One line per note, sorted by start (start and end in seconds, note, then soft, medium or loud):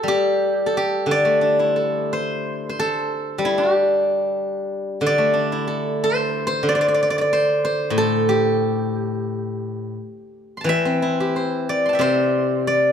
0.00 2.07 G3 soft
0.00 0.66 A4 medium
0.08 0.77 G4 medium
0.66 1.76 A4 medium
0.77 3.12 G4 medium
1.06 3.07 D3 soft
1.11 1.60 D5 medium
1.25 2.58 A3 soft
1.41 2.74 D4 soft
1.59 2.92 E4 soft
1.59 1.72 C#5 medium
1.72 2.78 A4 soft
1.72 2.13 C5 medium
2.13 2.69 C5 medium
2.69 4.67 C5 medium
2.79 4.99 A4 medium
3.38 5.35 G3 medium
3.45 3.74 E4 medium
3.58 4.88 D4 soft
3.74 5.80 G4 medium
5.01 6.62 D3 medium
5.06 6.68 D5 medium
5.18 6.48 A3 soft
5.34 6.63 D4 soft
5.52 6.81 E4 soft
5.67 6.96 A4 soft
6.04 6.46 C5 medium
6.47 7.32 C5 medium
6.63 8.60 D3 medium
6.69 6.75 D5 medium
6.75 6.81 D5 medium
6.81 6.88 D5 medium
6.88 6.94 D5 medium
6.94 7.02 D5 medium
7.03 7.10 D5 medium
7.10 7.18 D5 medium
7.18 7.21 D5 medium
7.18 9.06 D5 medium
7.33 7.64 C5 medium
7.65 9.63 C5 medium
7.90 9.95 A2 medium
7.98 10.17 A4 medium
8.29 10.64 G4 medium
10.57 11.88 A5 soft
10.57 11.85 C6 soft
10.64 12.67 E3 medium
10.64 11.93 G5 soft
10.69 11.94 E5 medium
10.85 12.19 C4 soft
11.02 12.35 E4 soft
11.20 12.53 G4 soft
11.36 12.00 C5 soft
11.69 11.99 D5 medium
11.86 12.92 A5 soft
11.86 12.92 C6 soft
11.93 12.92 E5 soft
11.93 12.92 G5 soft
11.99 12.92 C3 medium
11.99 12.92 C5 medium
11.99 12.67 D5 soft
12.67 12.92 D5 medium